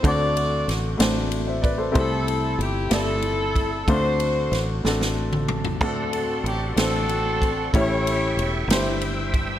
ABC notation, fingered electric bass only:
X:1
M:6/8
L:1/8
Q:3/8=62
K:Dmix
V:1 name="Fingered electric bass" clef=bass
D,,2 A,,, A,,,3 | C,,2 G,,, G,,,3 | D,,2 A,,, A,,,3 | D,,2 A,,, A,,,3 |
A,,,2 E,,, G,,,3 |]